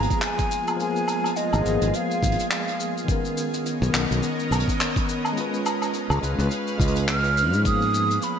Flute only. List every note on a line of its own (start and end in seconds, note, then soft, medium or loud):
0.00 0.23 A#5 loud
0.24 0.76 G#5 loud
0.81 1.38 G#5 loud
1.37 1.97 D#5 medium
1.95 2.50 F5 loud
2.51 2.93 F5 medium
7.10 7.62 F6 loud
7.66 8.25 D#6 loud
8.23 8.39 B5 loud